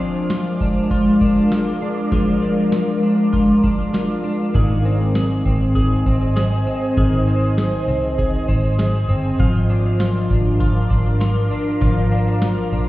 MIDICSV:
0, 0, Header, 1, 5, 480
1, 0, Start_track
1, 0, Tempo, 606061
1, 1679, Time_signature, 4, 2, 24, 8
1, 10206, End_track
2, 0, Start_track
2, 0, Title_t, "Ambient pad"
2, 0, Program_c, 0, 92
2, 0, Note_on_c, 0, 56, 72
2, 0, Note_on_c, 0, 70, 64
2, 0, Note_on_c, 0, 74, 66
2, 0, Note_on_c, 0, 77, 63
2, 0, Note_on_c, 0, 86, 82
2, 3567, Note_off_c, 0, 86, 0
2, 3569, Note_off_c, 0, 56, 0
2, 3569, Note_off_c, 0, 70, 0
2, 3569, Note_off_c, 0, 77, 0
2, 3571, Note_off_c, 0, 74, 0
2, 3605, Note_on_c, 0, 87, 79
2, 3610, Note_on_c, 0, 72, 72
2, 3610, Note_on_c, 0, 75, 69
2, 3611, Note_on_c, 0, 80, 63
2, 7410, Note_off_c, 0, 87, 0
2, 7413, Note_off_c, 0, 72, 0
2, 7413, Note_off_c, 0, 75, 0
2, 7413, Note_off_c, 0, 80, 0
2, 7436, Note_on_c, 0, 77, 62
2, 7438, Note_on_c, 0, 74, 66
2, 7438, Note_on_c, 0, 86, 76
2, 7442, Note_on_c, 0, 70, 70
2, 9339, Note_off_c, 0, 86, 0
2, 9364, Note_on_c, 0, 84, 77
2, 10206, Note_off_c, 0, 70, 0
2, 10206, Note_off_c, 0, 74, 0
2, 10206, Note_off_c, 0, 77, 0
2, 10206, Note_off_c, 0, 84, 0
2, 10206, End_track
3, 0, Start_track
3, 0, Title_t, "Clean electric guitar"
3, 0, Program_c, 1, 27
3, 0, Note_on_c, 1, 53, 73
3, 0, Note_on_c, 1, 62, 50
3, 0, Note_on_c, 1, 65, 62
3, 231, Note_off_c, 1, 65, 0
3, 240, Note_on_c, 1, 65, 58
3, 473, Note_off_c, 1, 62, 0
3, 482, Note_on_c, 1, 62, 52
3, 711, Note_off_c, 1, 65, 0
3, 721, Note_on_c, 1, 65, 62
3, 949, Note_off_c, 1, 62, 0
3, 959, Note_on_c, 1, 62, 55
3, 1191, Note_off_c, 1, 65, 0
3, 1200, Note_on_c, 1, 65, 61
3, 1431, Note_off_c, 1, 62, 0
3, 1441, Note_on_c, 1, 62, 53
3, 1670, Note_off_c, 1, 53, 0
3, 1674, Note_off_c, 1, 65, 0
3, 1680, Note_on_c, 1, 53, 69
3, 1683, Note_on_c, 1, 65, 63
3, 1907, Note_off_c, 1, 62, 0
3, 1917, Note_on_c, 1, 62, 50
3, 2149, Note_off_c, 1, 65, 0
3, 2158, Note_on_c, 1, 65, 54
3, 2390, Note_off_c, 1, 62, 0
3, 2400, Note_on_c, 1, 62, 48
3, 2626, Note_off_c, 1, 65, 0
3, 2636, Note_on_c, 1, 65, 61
3, 2868, Note_off_c, 1, 62, 0
3, 2878, Note_on_c, 1, 62, 51
3, 3108, Note_off_c, 1, 65, 0
3, 3117, Note_on_c, 1, 65, 57
3, 3349, Note_off_c, 1, 62, 0
3, 3359, Note_on_c, 1, 62, 52
3, 3597, Note_off_c, 1, 53, 0
3, 3598, Note_off_c, 1, 65, 0
3, 3600, Note_on_c, 1, 51, 71
3, 3606, Note_on_c, 1, 68, 62
3, 3647, Note_off_c, 1, 62, 0
3, 3842, Note_on_c, 1, 60, 54
3, 4071, Note_off_c, 1, 68, 0
3, 4081, Note_on_c, 1, 68, 57
3, 4311, Note_off_c, 1, 60, 0
3, 4321, Note_on_c, 1, 60, 47
3, 4547, Note_off_c, 1, 68, 0
3, 4556, Note_on_c, 1, 68, 62
3, 4792, Note_off_c, 1, 60, 0
3, 4801, Note_on_c, 1, 60, 51
3, 5028, Note_off_c, 1, 68, 0
3, 5037, Note_on_c, 1, 68, 58
3, 5272, Note_off_c, 1, 60, 0
3, 5281, Note_on_c, 1, 60, 52
3, 5513, Note_off_c, 1, 51, 0
3, 5518, Note_off_c, 1, 68, 0
3, 5522, Note_on_c, 1, 51, 70
3, 5527, Note_on_c, 1, 68, 62
3, 5751, Note_off_c, 1, 60, 0
3, 5761, Note_on_c, 1, 60, 51
3, 5989, Note_off_c, 1, 68, 0
3, 5999, Note_on_c, 1, 68, 56
3, 6233, Note_off_c, 1, 60, 0
3, 6243, Note_on_c, 1, 60, 51
3, 6471, Note_off_c, 1, 68, 0
3, 6481, Note_on_c, 1, 68, 57
3, 6710, Note_off_c, 1, 60, 0
3, 6719, Note_on_c, 1, 60, 55
3, 6949, Note_off_c, 1, 68, 0
3, 6959, Note_on_c, 1, 68, 59
3, 7189, Note_off_c, 1, 60, 0
3, 7198, Note_on_c, 1, 60, 54
3, 7437, Note_off_c, 1, 51, 0
3, 7439, Note_off_c, 1, 68, 0
3, 7440, Note_on_c, 1, 53, 74
3, 7444, Note_on_c, 1, 65, 61
3, 7487, Note_off_c, 1, 60, 0
3, 7681, Note_on_c, 1, 62, 51
3, 7914, Note_off_c, 1, 65, 0
3, 7918, Note_on_c, 1, 65, 60
3, 8157, Note_off_c, 1, 62, 0
3, 8160, Note_on_c, 1, 62, 47
3, 8394, Note_off_c, 1, 65, 0
3, 8397, Note_on_c, 1, 65, 61
3, 8631, Note_off_c, 1, 62, 0
3, 8634, Note_on_c, 1, 62, 57
3, 8872, Note_off_c, 1, 65, 0
3, 8875, Note_on_c, 1, 65, 64
3, 9113, Note_off_c, 1, 62, 0
3, 9116, Note_on_c, 1, 62, 54
3, 9353, Note_off_c, 1, 53, 0
3, 9356, Note_on_c, 1, 53, 75
3, 9358, Note_off_c, 1, 65, 0
3, 9361, Note_on_c, 1, 65, 64
3, 9592, Note_off_c, 1, 62, 0
3, 9595, Note_on_c, 1, 62, 52
3, 9833, Note_off_c, 1, 65, 0
3, 9836, Note_on_c, 1, 65, 55
3, 10076, Note_off_c, 1, 62, 0
3, 10079, Note_on_c, 1, 62, 50
3, 10206, Note_off_c, 1, 53, 0
3, 10206, Note_off_c, 1, 62, 0
3, 10206, Note_off_c, 1, 65, 0
3, 10206, End_track
4, 0, Start_track
4, 0, Title_t, "Fingered electric bass"
4, 0, Program_c, 2, 33
4, 3602, Note_on_c, 2, 32, 93
4, 4289, Note_off_c, 2, 32, 0
4, 4323, Note_on_c, 2, 32, 81
4, 4777, Note_off_c, 2, 32, 0
4, 4802, Note_on_c, 2, 32, 77
4, 5256, Note_off_c, 2, 32, 0
4, 5522, Note_on_c, 2, 32, 88
4, 6091, Note_off_c, 2, 32, 0
4, 6239, Note_on_c, 2, 36, 77
4, 6695, Note_off_c, 2, 36, 0
4, 6722, Note_on_c, 2, 32, 82
4, 7176, Note_off_c, 2, 32, 0
4, 7196, Note_on_c, 2, 31, 73
4, 7425, Note_off_c, 2, 31, 0
4, 7439, Note_on_c, 2, 32, 81
4, 8127, Note_off_c, 2, 32, 0
4, 8161, Note_on_c, 2, 32, 83
4, 8616, Note_off_c, 2, 32, 0
4, 8639, Note_on_c, 2, 32, 86
4, 9095, Note_off_c, 2, 32, 0
4, 9355, Note_on_c, 2, 32, 83
4, 9927, Note_off_c, 2, 32, 0
4, 10076, Note_on_c, 2, 34, 80
4, 10206, Note_off_c, 2, 34, 0
4, 10206, End_track
5, 0, Start_track
5, 0, Title_t, "Drums"
5, 238, Note_on_c, 9, 38, 104
5, 239, Note_on_c, 9, 42, 61
5, 317, Note_off_c, 9, 38, 0
5, 318, Note_off_c, 9, 42, 0
5, 481, Note_on_c, 9, 36, 76
5, 560, Note_off_c, 9, 36, 0
5, 718, Note_on_c, 9, 36, 79
5, 721, Note_on_c, 9, 42, 66
5, 797, Note_off_c, 9, 36, 0
5, 800, Note_off_c, 9, 42, 0
5, 959, Note_on_c, 9, 36, 77
5, 1039, Note_off_c, 9, 36, 0
5, 1202, Note_on_c, 9, 38, 94
5, 1202, Note_on_c, 9, 42, 66
5, 1281, Note_off_c, 9, 38, 0
5, 1281, Note_off_c, 9, 42, 0
5, 1679, Note_on_c, 9, 36, 93
5, 1679, Note_on_c, 9, 42, 60
5, 1758, Note_off_c, 9, 36, 0
5, 1758, Note_off_c, 9, 42, 0
5, 2156, Note_on_c, 9, 38, 106
5, 2157, Note_on_c, 9, 42, 64
5, 2236, Note_off_c, 9, 38, 0
5, 2236, Note_off_c, 9, 42, 0
5, 2641, Note_on_c, 9, 36, 84
5, 2644, Note_on_c, 9, 42, 63
5, 2720, Note_off_c, 9, 36, 0
5, 2723, Note_off_c, 9, 42, 0
5, 2881, Note_on_c, 9, 36, 77
5, 2961, Note_off_c, 9, 36, 0
5, 3123, Note_on_c, 9, 38, 97
5, 3123, Note_on_c, 9, 42, 62
5, 3202, Note_off_c, 9, 38, 0
5, 3203, Note_off_c, 9, 42, 0
5, 3602, Note_on_c, 9, 36, 94
5, 3603, Note_on_c, 9, 42, 57
5, 3681, Note_off_c, 9, 36, 0
5, 3682, Note_off_c, 9, 42, 0
5, 4081, Note_on_c, 9, 38, 104
5, 4081, Note_on_c, 9, 42, 58
5, 4160, Note_off_c, 9, 38, 0
5, 4161, Note_off_c, 9, 42, 0
5, 4324, Note_on_c, 9, 36, 76
5, 4403, Note_off_c, 9, 36, 0
5, 4562, Note_on_c, 9, 36, 82
5, 4564, Note_on_c, 9, 42, 61
5, 4641, Note_off_c, 9, 36, 0
5, 4644, Note_off_c, 9, 42, 0
5, 4803, Note_on_c, 9, 36, 73
5, 4882, Note_off_c, 9, 36, 0
5, 5043, Note_on_c, 9, 38, 92
5, 5044, Note_on_c, 9, 42, 70
5, 5122, Note_off_c, 9, 38, 0
5, 5123, Note_off_c, 9, 42, 0
5, 5523, Note_on_c, 9, 36, 101
5, 5524, Note_on_c, 9, 42, 59
5, 5602, Note_off_c, 9, 36, 0
5, 5604, Note_off_c, 9, 42, 0
5, 6003, Note_on_c, 9, 38, 103
5, 6004, Note_on_c, 9, 42, 65
5, 6082, Note_off_c, 9, 38, 0
5, 6083, Note_off_c, 9, 42, 0
5, 6483, Note_on_c, 9, 36, 80
5, 6486, Note_on_c, 9, 42, 62
5, 6563, Note_off_c, 9, 36, 0
5, 6566, Note_off_c, 9, 42, 0
5, 6723, Note_on_c, 9, 36, 71
5, 6802, Note_off_c, 9, 36, 0
5, 6963, Note_on_c, 9, 38, 94
5, 6964, Note_on_c, 9, 42, 66
5, 7042, Note_off_c, 9, 38, 0
5, 7043, Note_off_c, 9, 42, 0
5, 7440, Note_on_c, 9, 42, 59
5, 7441, Note_on_c, 9, 36, 101
5, 7519, Note_off_c, 9, 42, 0
5, 7520, Note_off_c, 9, 36, 0
5, 7919, Note_on_c, 9, 38, 101
5, 7920, Note_on_c, 9, 42, 63
5, 7998, Note_off_c, 9, 38, 0
5, 7999, Note_off_c, 9, 42, 0
5, 8162, Note_on_c, 9, 36, 83
5, 8241, Note_off_c, 9, 36, 0
5, 8400, Note_on_c, 9, 36, 85
5, 8401, Note_on_c, 9, 42, 65
5, 8479, Note_off_c, 9, 36, 0
5, 8480, Note_off_c, 9, 42, 0
5, 8640, Note_on_c, 9, 36, 80
5, 8719, Note_off_c, 9, 36, 0
5, 8880, Note_on_c, 9, 38, 89
5, 8880, Note_on_c, 9, 42, 69
5, 8959, Note_off_c, 9, 38, 0
5, 8959, Note_off_c, 9, 42, 0
5, 9357, Note_on_c, 9, 42, 61
5, 9358, Note_on_c, 9, 36, 99
5, 9436, Note_off_c, 9, 42, 0
5, 9437, Note_off_c, 9, 36, 0
5, 9835, Note_on_c, 9, 38, 111
5, 9836, Note_on_c, 9, 42, 61
5, 9914, Note_off_c, 9, 38, 0
5, 9915, Note_off_c, 9, 42, 0
5, 10206, End_track
0, 0, End_of_file